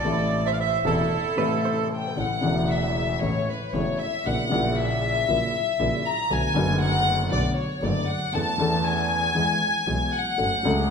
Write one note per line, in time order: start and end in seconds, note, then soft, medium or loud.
0.00 0.79 C3 medium
0.00 0.41 A4 medium
0.00 0.47 D5 medium
0.05 0.80 A1 medium
0.05 0.80 A2 medium
0.05 0.80 E3 medium
0.05 0.81 A3 medium
0.05 0.81 E4 medium
0.46 0.52 C5 medium
0.46 0.53 E5 medium
0.52 0.59 D5 medium
0.52 0.59 F5 medium
0.60 0.84 C5 medium
0.60 0.86 E5 medium
0.84 1.06 E1 medium
0.84 1.07 E1 medium
0.84 1.07 E2 medium
0.84 1.07 C3 medium
0.84 1.07 E3 medium
0.84 1.07 A3 medium
0.84 1.07 E4 medium
0.84 1.89 E4 medium
0.84 1.88 A4 medium
1.36 2.14 A1 medium
1.36 2.14 A2 medium
1.36 2.13 C3 medium
1.36 2.14 E3 medium
1.36 2.14 A3 medium
1.36 1.65 B4 medium
1.40 2.15 E4 medium
1.65 2.15 C5 medium
1.93 2.17 G5 medium
2.17 2.39 A1 soft
2.17 2.40 A1 medium
2.17 2.39 A2 soft
2.17 2.39 C#3 soft
2.17 2.39 E3 soft
2.17 2.39 A3 soft
2.17 2.39 E4 soft
2.17 2.71 F#5 medium
2.41 3.18 E1 medium
2.41 3.18 E2 medium
2.41 3.17 C#3 medium
2.41 3.17 E3 medium
2.41 3.18 A3 medium
2.41 3.18 E4 medium
2.70 3.22 E5 medium
3.21 3.44 A1 medium
3.21 3.44 A2 medium
3.21 3.44 C#3 soft
3.21 3.44 E3 soft
3.21 3.44 A3 soft
3.21 3.44 E4 medium
3.21 3.48 C#5 medium
3.48 3.74 B4 medium
3.74 3.96 E1 medium
3.74 3.96 E2 medium
3.74 3.96 C#3 soft
3.74 3.96 E3 soft
3.74 3.96 A3 soft
3.74 3.96 E4 soft
3.74 4.00 C#5 medium
3.99 4.25 E5 medium
4.25 4.47 A#1 medium
4.25 4.48 A#1 soft
4.25 4.48 A#2 medium
4.25 4.48 C#3 soft
4.25 4.48 F#3 soft
4.25 4.48 A#3 soft
4.25 4.48 E4 medium
4.25 4.77 F#5 medium
4.49 5.24 A#1 medium
4.49 5.25 A#1 medium
4.49 5.24 A#2 medium
4.49 5.23 C#3 medium
4.49 5.24 F#3 medium
4.49 5.25 A#3 medium
4.53 5.25 E4 medium
4.78 6.06 E5 medium
5.28 5.50 A#1 medium
5.28 5.50 A#2 medium
5.28 5.50 C#3 medium
5.28 5.50 F#3 soft
5.28 5.50 A#3 soft
5.28 5.50 E4 medium
5.79 6.01 A#1 medium
5.79 6.01 A#2 medium
5.79 6.01 C#3 medium
5.79 6.01 F#3 soft
5.79 6.01 A#3 soft
5.79 6.01 E4 medium
6.08 6.32 A#5 medium
6.30 6.52 B1 medium
6.30 6.52 B1 soft
6.30 6.52 B2 medium
6.30 6.52 D3 soft
6.30 6.52 A3 soft
6.30 6.52 B3 soft
6.30 6.52 F#4 soft
6.30 6.82 G#5 loud
6.54 7.27 F#1 medium
6.54 7.28 F#2 medium
6.54 7.27 D3 medium
6.54 7.27 A3 medium
6.54 7.28 B3 medium
6.58 7.29 F#4 medium
6.82 7.28 F#5 loud
7.31 7.52 B1 medium
7.31 7.53 B2 medium
7.31 7.52 D3 soft
7.31 7.52 A3 soft
7.31 7.53 B3 soft
7.31 7.53 F#4 medium
7.31 7.55 D5 medium
7.57 7.80 C#5 medium
7.82 8.03 F#1 medium
7.82 8.04 F#1 medium
7.82 8.03 F#2 medium
7.82 8.03 D3 medium
7.82 8.04 A3 soft
7.82 8.04 B3 soft
7.82 8.04 F#4 medium
7.82 8.08 D5 medium
8.09 8.34 F#5 medium
8.32 8.54 E2 medium
8.32 8.55 E2 medium
8.32 8.55 E3 medium
8.32 8.55 A3 soft
8.32 8.55 C#4 soft
8.32 8.55 A4 soft
8.32 8.85 A5 loud
8.58 9.31 E2 medium
8.58 9.32 E2 medium
8.58 9.32 E3 medium
8.58 9.32 A3 medium
8.58 9.32 C#4 medium
8.58 9.33 A4 medium
8.86 10.14 G#5 loud
9.35 9.57 E2 medium
9.35 9.57 E3 medium
9.35 9.57 G#3 soft
9.35 9.57 B3 soft
9.35 9.57 G#4 medium
9.87 10.09 B1 medium
9.87 10.09 B2 medium
9.87 10.09 E3 soft
9.87 10.09 G#3 soft
9.87 10.09 B3 soft
9.87 10.09 G#4 medium
10.15 10.90 F#5 medium
10.38 10.61 F#1 medium
10.38 10.61 F#2 soft
10.38 10.61 F#3 medium
10.38 10.60 A3 soft
10.38 10.61 C#4 soft
10.38 10.61 A4 soft
10.63 10.90 C#2 medium
10.63 10.90 C#3 medium
10.63 10.90 F#3 medium
10.63 10.90 A3 medium
10.63 10.90 C#4 medium
10.67 10.90 A4 medium